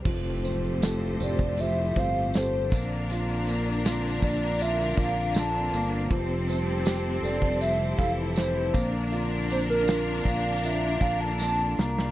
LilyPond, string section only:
\new Staff \with { instrumentName = "String section" } { \time 4/4 \key f \major \tempo 4 = 80 << { <f g' a' c''>2.~ <f g' a' c''>8 <d' bes'>8~ | <d' bes'>1 | <g g' a' c''>2.~ <g g' a' c''>8 <d' bes'>8~ | <d' bes'>1 | } \\ { c'1~ | c'1~ | c'1~ | c'1 | } >> }